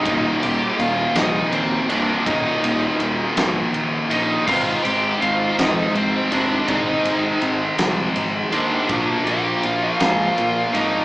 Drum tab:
CC |------|------|x-----|------|
RD |xxxxxx|xxxxxx|-xxxxx|xxxxxx|
SD |---o--|---o--|---o--|---o--|
BD |o-----|o-----|o-----|o-----|

CC |------|
RD |xxxxxx|
SD |---o--|
BD |o-----|